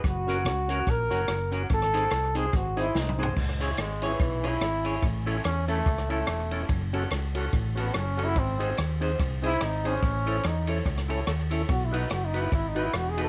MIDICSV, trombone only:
0, 0, Header, 1, 2, 480
1, 0, Start_track
1, 0, Key_signature, 4, "minor"
1, 0, Tempo, 416089
1, 45, Time_signature, 4, 2, 24, 8
1, 15328, End_track
2, 0, Start_track
2, 0, Title_t, "Trombone"
2, 0, Program_c, 0, 57
2, 101, Note_on_c, 0, 66, 108
2, 1034, Note_on_c, 0, 70, 123
2, 1051, Note_off_c, 0, 66, 0
2, 1774, Note_off_c, 0, 70, 0
2, 2008, Note_on_c, 0, 69, 117
2, 2695, Note_off_c, 0, 69, 0
2, 2747, Note_on_c, 0, 68, 104
2, 2955, Note_on_c, 0, 66, 93
2, 2972, Note_off_c, 0, 68, 0
2, 3214, Note_off_c, 0, 66, 0
2, 3232, Note_on_c, 0, 64, 102
2, 3449, Note_on_c, 0, 63, 83
2, 3466, Note_off_c, 0, 64, 0
2, 3701, Note_off_c, 0, 63, 0
2, 4377, Note_on_c, 0, 56, 87
2, 4688, Note_on_c, 0, 52, 99
2, 4706, Note_off_c, 0, 56, 0
2, 5169, Note_on_c, 0, 64, 122
2, 5186, Note_off_c, 0, 52, 0
2, 5829, Note_off_c, 0, 64, 0
2, 6297, Note_on_c, 0, 61, 98
2, 6547, Note_off_c, 0, 61, 0
2, 6564, Note_on_c, 0, 57, 102
2, 7009, Note_off_c, 0, 57, 0
2, 7063, Note_on_c, 0, 57, 90
2, 7691, Note_off_c, 0, 57, 0
2, 8991, Note_on_c, 0, 59, 85
2, 9170, Note_on_c, 0, 61, 98
2, 9188, Note_off_c, 0, 59, 0
2, 9509, Note_on_c, 0, 64, 111
2, 9527, Note_off_c, 0, 61, 0
2, 9677, Note_on_c, 0, 60, 97
2, 9695, Note_off_c, 0, 64, 0
2, 10141, Note_off_c, 0, 60, 0
2, 10911, Note_on_c, 0, 64, 121
2, 11133, Note_on_c, 0, 63, 101
2, 11150, Note_off_c, 0, 64, 0
2, 11417, Note_on_c, 0, 61, 118
2, 11434, Note_off_c, 0, 63, 0
2, 12083, Note_on_c, 0, 63, 94
2, 12100, Note_off_c, 0, 61, 0
2, 12338, Note_off_c, 0, 63, 0
2, 13509, Note_on_c, 0, 66, 89
2, 13670, Note_on_c, 0, 64, 75
2, 13687, Note_off_c, 0, 66, 0
2, 13818, Note_on_c, 0, 63, 80
2, 13835, Note_off_c, 0, 64, 0
2, 13978, Note_on_c, 0, 66, 85
2, 13995, Note_off_c, 0, 63, 0
2, 14133, Note_on_c, 0, 63, 85
2, 14150, Note_off_c, 0, 66, 0
2, 14300, Note_on_c, 0, 64, 86
2, 14317, Note_off_c, 0, 63, 0
2, 14452, Note_off_c, 0, 64, 0
2, 14475, Note_on_c, 0, 64, 89
2, 14634, Note_on_c, 0, 63, 87
2, 14651, Note_off_c, 0, 64, 0
2, 14791, Note_on_c, 0, 64, 99
2, 14809, Note_off_c, 0, 63, 0
2, 14958, Note_on_c, 0, 66, 92
2, 14975, Note_off_c, 0, 64, 0
2, 15109, Note_on_c, 0, 68, 104
2, 15126, Note_off_c, 0, 66, 0
2, 15256, Note_off_c, 0, 68, 0
2, 15272, Note_on_c, 0, 69, 90
2, 15328, Note_off_c, 0, 69, 0
2, 15328, End_track
0, 0, End_of_file